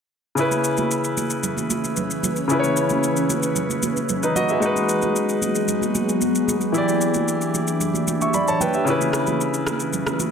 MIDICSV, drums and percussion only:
0, 0, Header, 1, 2, 480
1, 0, Start_track
1, 0, Tempo, 530973
1, 337, Time_signature, 4, 2, 24, 8
1, 9323, End_track
2, 0, Start_track
2, 0, Title_t, "Drums"
2, 337, Note_on_c, 9, 82, 56
2, 428, Note_off_c, 9, 82, 0
2, 462, Note_on_c, 9, 63, 58
2, 465, Note_on_c, 9, 82, 52
2, 552, Note_off_c, 9, 63, 0
2, 556, Note_off_c, 9, 82, 0
2, 580, Note_on_c, 9, 82, 71
2, 670, Note_off_c, 9, 82, 0
2, 698, Note_on_c, 9, 82, 48
2, 707, Note_on_c, 9, 63, 77
2, 788, Note_off_c, 9, 82, 0
2, 798, Note_off_c, 9, 63, 0
2, 823, Note_on_c, 9, 82, 64
2, 914, Note_off_c, 9, 82, 0
2, 941, Note_on_c, 9, 82, 50
2, 1031, Note_off_c, 9, 82, 0
2, 1059, Note_on_c, 9, 63, 69
2, 1060, Note_on_c, 9, 82, 76
2, 1149, Note_off_c, 9, 63, 0
2, 1151, Note_off_c, 9, 82, 0
2, 1176, Note_on_c, 9, 82, 59
2, 1266, Note_off_c, 9, 82, 0
2, 1294, Note_on_c, 9, 64, 61
2, 1296, Note_on_c, 9, 82, 78
2, 1384, Note_off_c, 9, 64, 0
2, 1387, Note_off_c, 9, 82, 0
2, 1416, Note_on_c, 9, 63, 65
2, 1426, Note_on_c, 9, 82, 47
2, 1506, Note_off_c, 9, 63, 0
2, 1516, Note_off_c, 9, 82, 0
2, 1537, Note_on_c, 9, 63, 74
2, 1538, Note_on_c, 9, 82, 76
2, 1628, Note_off_c, 9, 63, 0
2, 1629, Note_off_c, 9, 82, 0
2, 1665, Note_on_c, 9, 63, 53
2, 1665, Note_on_c, 9, 82, 49
2, 1755, Note_off_c, 9, 63, 0
2, 1755, Note_off_c, 9, 82, 0
2, 1776, Note_on_c, 9, 82, 64
2, 1783, Note_on_c, 9, 64, 69
2, 1866, Note_off_c, 9, 82, 0
2, 1874, Note_off_c, 9, 64, 0
2, 1902, Note_on_c, 9, 82, 52
2, 1993, Note_off_c, 9, 82, 0
2, 2016, Note_on_c, 9, 63, 70
2, 2016, Note_on_c, 9, 64, 69
2, 2024, Note_on_c, 9, 82, 96
2, 2107, Note_off_c, 9, 63, 0
2, 2107, Note_off_c, 9, 64, 0
2, 2114, Note_off_c, 9, 82, 0
2, 2135, Note_on_c, 9, 82, 45
2, 2225, Note_off_c, 9, 82, 0
2, 2257, Note_on_c, 9, 82, 57
2, 2347, Note_off_c, 9, 82, 0
2, 2380, Note_on_c, 9, 63, 57
2, 2386, Note_on_c, 9, 82, 52
2, 2470, Note_off_c, 9, 63, 0
2, 2476, Note_off_c, 9, 82, 0
2, 2499, Note_on_c, 9, 82, 74
2, 2589, Note_off_c, 9, 82, 0
2, 2616, Note_on_c, 9, 82, 51
2, 2626, Note_on_c, 9, 63, 78
2, 2707, Note_off_c, 9, 82, 0
2, 2716, Note_off_c, 9, 63, 0
2, 2742, Note_on_c, 9, 82, 65
2, 2832, Note_off_c, 9, 82, 0
2, 2861, Note_on_c, 9, 82, 51
2, 2952, Note_off_c, 9, 82, 0
2, 2977, Note_on_c, 9, 63, 69
2, 2981, Note_on_c, 9, 82, 73
2, 3067, Note_off_c, 9, 63, 0
2, 3071, Note_off_c, 9, 82, 0
2, 3098, Note_on_c, 9, 82, 63
2, 3188, Note_off_c, 9, 82, 0
2, 3214, Note_on_c, 9, 64, 61
2, 3217, Note_on_c, 9, 82, 73
2, 3304, Note_off_c, 9, 64, 0
2, 3307, Note_off_c, 9, 82, 0
2, 3336, Note_on_c, 9, 63, 63
2, 3347, Note_on_c, 9, 82, 49
2, 3426, Note_off_c, 9, 63, 0
2, 3438, Note_off_c, 9, 82, 0
2, 3459, Note_on_c, 9, 63, 77
2, 3459, Note_on_c, 9, 82, 83
2, 3549, Note_off_c, 9, 63, 0
2, 3549, Note_off_c, 9, 82, 0
2, 3585, Note_on_c, 9, 82, 49
2, 3586, Note_on_c, 9, 63, 56
2, 3675, Note_off_c, 9, 82, 0
2, 3676, Note_off_c, 9, 63, 0
2, 3696, Note_on_c, 9, 82, 68
2, 3704, Note_on_c, 9, 64, 69
2, 3787, Note_off_c, 9, 82, 0
2, 3794, Note_off_c, 9, 64, 0
2, 3824, Note_on_c, 9, 82, 52
2, 3914, Note_off_c, 9, 82, 0
2, 3937, Note_on_c, 9, 63, 65
2, 3937, Note_on_c, 9, 64, 68
2, 3945, Note_on_c, 9, 82, 97
2, 4027, Note_off_c, 9, 63, 0
2, 4027, Note_off_c, 9, 64, 0
2, 4035, Note_off_c, 9, 82, 0
2, 4056, Note_on_c, 9, 82, 45
2, 4146, Note_off_c, 9, 82, 0
2, 4178, Note_on_c, 9, 82, 59
2, 4269, Note_off_c, 9, 82, 0
2, 4301, Note_on_c, 9, 63, 59
2, 4307, Note_on_c, 9, 82, 51
2, 4391, Note_off_c, 9, 63, 0
2, 4397, Note_off_c, 9, 82, 0
2, 4420, Note_on_c, 9, 82, 73
2, 4510, Note_off_c, 9, 82, 0
2, 4536, Note_on_c, 9, 82, 51
2, 4546, Note_on_c, 9, 63, 80
2, 4627, Note_off_c, 9, 82, 0
2, 4636, Note_off_c, 9, 63, 0
2, 4663, Note_on_c, 9, 82, 63
2, 4754, Note_off_c, 9, 82, 0
2, 4782, Note_on_c, 9, 82, 52
2, 4873, Note_off_c, 9, 82, 0
2, 4896, Note_on_c, 9, 63, 70
2, 4902, Note_on_c, 9, 82, 74
2, 4986, Note_off_c, 9, 63, 0
2, 4992, Note_off_c, 9, 82, 0
2, 5018, Note_on_c, 9, 82, 62
2, 5108, Note_off_c, 9, 82, 0
2, 5132, Note_on_c, 9, 64, 63
2, 5137, Note_on_c, 9, 82, 77
2, 5222, Note_off_c, 9, 64, 0
2, 5227, Note_off_c, 9, 82, 0
2, 5255, Note_on_c, 9, 63, 65
2, 5266, Note_on_c, 9, 82, 48
2, 5345, Note_off_c, 9, 63, 0
2, 5356, Note_off_c, 9, 82, 0
2, 5377, Note_on_c, 9, 63, 78
2, 5378, Note_on_c, 9, 82, 77
2, 5467, Note_off_c, 9, 63, 0
2, 5468, Note_off_c, 9, 82, 0
2, 5504, Note_on_c, 9, 63, 55
2, 5505, Note_on_c, 9, 82, 49
2, 5595, Note_off_c, 9, 63, 0
2, 5595, Note_off_c, 9, 82, 0
2, 5616, Note_on_c, 9, 82, 66
2, 5623, Note_on_c, 9, 64, 66
2, 5706, Note_off_c, 9, 82, 0
2, 5713, Note_off_c, 9, 64, 0
2, 5742, Note_on_c, 9, 82, 51
2, 5833, Note_off_c, 9, 82, 0
2, 5856, Note_on_c, 9, 63, 67
2, 5856, Note_on_c, 9, 64, 67
2, 5864, Note_on_c, 9, 82, 103
2, 5947, Note_off_c, 9, 63, 0
2, 5947, Note_off_c, 9, 64, 0
2, 5954, Note_off_c, 9, 82, 0
2, 5974, Note_on_c, 9, 82, 44
2, 6065, Note_off_c, 9, 82, 0
2, 6097, Note_on_c, 9, 82, 57
2, 6187, Note_off_c, 9, 82, 0
2, 6222, Note_on_c, 9, 63, 57
2, 6224, Note_on_c, 9, 82, 54
2, 6312, Note_off_c, 9, 63, 0
2, 6315, Note_off_c, 9, 82, 0
2, 6338, Note_on_c, 9, 82, 68
2, 6428, Note_off_c, 9, 82, 0
2, 6455, Note_on_c, 9, 82, 50
2, 6466, Note_on_c, 9, 63, 75
2, 6545, Note_off_c, 9, 82, 0
2, 6557, Note_off_c, 9, 63, 0
2, 6582, Note_on_c, 9, 82, 63
2, 6672, Note_off_c, 9, 82, 0
2, 6701, Note_on_c, 9, 82, 50
2, 6792, Note_off_c, 9, 82, 0
2, 6818, Note_on_c, 9, 63, 68
2, 6821, Note_on_c, 9, 82, 79
2, 6908, Note_off_c, 9, 63, 0
2, 6911, Note_off_c, 9, 82, 0
2, 6936, Note_on_c, 9, 82, 61
2, 7027, Note_off_c, 9, 82, 0
2, 7054, Note_on_c, 9, 64, 63
2, 7057, Note_on_c, 9, 82, 76
2, 7144, Note_off_c, 9, 64, 0
2, 7147, Note_off_c, 9, 82, 0
2, 7175, Note_on_c, 9, 63, 65
2, 7187, Note_on_c, 9, 82, 47
2, 7265, Note_off_c, 9, 63, 0
2, 7278, Note_off_c, 9, 82, 0
2, 7298, Note_on_c, 9, 63, 80
2, 7300, Note_on_c, 9, 82, 79
2, 7388, Note_off_c, 9, 63, 0
2, 7390, Note_off_c, 9, 82, 0
2, 7425, Note_on_c, 9, 63, 53
2, 7425, Note_on_c, 9, 82, 48
2, 7515, Note_off_c, 9, 63, 0
2, 7515, Note_off_c, 9, 82, 0
2, 7536, Note_on_c, 9, 82, 65
2, 7543, Note_on_c, 9, 64, 66
2, 7627, Note_off_c, 9, 82, 0
2, 7633, Note_off_c, 9, 64, 0
2, 7663, Note_on_c, 9, 82, 50
2, 7754, Note_off_c, 9, 82, 0
2, 7777, Note_on_c, 9, 63, 70
2, 7777, Note_on_c, 9, 64, 70
2, 7785, Note_on_c, 9, 82, 102
2, 7867, Note_off_c, 9, 63, 0
2, 7867, Note_off_c, 9, 64, 0
2, 7875, Note_off_c, 9, 82, 0
2, 7896, Note_on_c, 9, 82, 44
2, 7986, Note_off_c, 9, 82, 0
2, 8018, Note_on_c, 9, 82, 57
2, 8109, Note_off_c, 9, 82, 0
2, 8141, Note_on_c, 9, 63, 55
2, 8146, Note_on_c, 9, 82, 53
2, 8231, Note_off_c, 9, 63, 0
2, 8236, Note_off_c, 9, 82, 0
2, 8255, Note_on_c, 9, 37, 77
2, 8261, Note_on_c, 9, 82, 72
2, 8345, Note_off_c, 9, 37, 0
2, 8352, Note_off_c, 9, 82, 0
2, 8378, Note_on_c, 9, 82, 51
2, 8387, Note_on_c, 9, 63, 73
2, 8469, Note_off_c, 9, 82, 0
2, 8477, Note_off_c, 9, 63, 0
2, 8504, Note_on_c, 9, 82, 62
2, 8594, Note_off_c, 9, 82, 0
2, 8622, Note_on_c, 9, 82, 50
2, 8712, Note_off_c, 9, 82, 0
2, 8737, Note_on_c, 9, 37, 95
2, 8737, Note_on_c, 9, 63, 68
2, 8742, Note_on_c, 9, 82, 74
2, 8827, Note_off_c, 9, 63, 0
2, 8828, Note_off_c, 9, 37, 0
2, 8832, Note_off_c, 9, 82, 0
2, 8857, Note_on_c, 9, 82, 58
2, 8948, Note_off_c, 9, 82, 0
2, 8973, Note_on_c, 9, 64, 61
2, 8976, Note_on_c, 9, 82, 75
2, 9064, Note_off_c, 9, 64, 0
2, 9066, Note_off_c, 9, 82, 0
2, 9095, Note_on_c, 9, 63, 64
2, 9099, Note_on_c, 9, 37, 82
2, 9105, Note_on_c, 9, 82, 47
2, 9186, Note_off_c, 9, 63, 0
2, 9189, Note_off_c, 9, 37, 0
2, 9196, Note_off_c, 9, 82, 0
2, 9216, Note_on_c, 9, 63, 80
2, 9218, Note_on_c, 9, 82, 80
2, 9306, Note_off_c, 9, 63, 0
2, 9308, Note_off_c, 9, 82, 0
2, 9323, End_track
0, 0, End_of_file